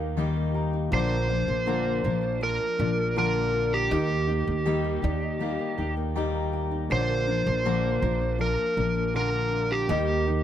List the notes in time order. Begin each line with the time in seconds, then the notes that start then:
Already playing: D#2 D#3 A#3 D#4 G4 D#5 F5 G5
0.00 A#3
0.17 D#3 G3 A#3 D#4 G4 G5
0.36 A#3
0.54 G4 A#5
0.73 D#4
0.91 A#1 A#2 D3 F3 A#3 D4 F4 A#4 C5
0.95 D5
1.10 A#3
1.29 F3 A#3 D4 A#4
1.48 A#1 A#3
1.66 A#2 D3 F3 A#3 D4 F4 A#4
1.85 A#3
2.04 A#1 F3 A#3 D4 F4 A#4
2.22 D4
2.41 F3 A#3 D4 A#4
2.60 A#3
2.78 A#1 F3 A#3 D4 F4 A#4 D5
2.97 A#3
3.16 A#2 D3 F3 A#3 D4 F4 A#4
3.35 A#3
3.54 F4
3.72 D4 G4
3.89 D#2 D#3 G3 A#3 D#4 G4
3.93 D#5
4.10 A#3
4.28 A#3 D#4 G4
4.47 D#2 A#3
4.65 D#3 G3 A#3 D#4 G4
4.84 A#3
5.02 D#2 A#3 D#4 G4 D5
5.23 D#5
5.39 D#3 G3 A#3 D#4 G4 F5
5.59 A#3 G5
5.78 D#2 A#3 D#4 G4 G5
5.97 A#3
6.15 D#3 G3 A#3 D#4 G4 A#5
6.34 A#3 A#5
6.53 G4
6.71 D#4
6.89 A#1 A#2 D3 F3 A#3 D4 F4 A#4 C5 C#5
6.99 D5
7.09 A#3
7.27 F3 A#3 D4 A#4
7.46 A#1 A#3
7.65 A#2 D3 F3 A#3 D4 F4 A#4
7.84 A#3
8.02 A#1 F3 A#3 D4 F4 A#4
8.21 D4
8.39 F3 A#3 D4 A#4
8.58 A#3
8.77 A#1 F3 A#3 D4 A#4
8.95 A#3
9.14 A#2 D3 F3 A#3 D4 F4 A#4
9.33 A#3
9.52 F4
9.70 D4 G4
9.87 D#2 D#3 G3 A#3 D#4 G4 D#5
10.08 A#3
10.26 A#3 D#4 G4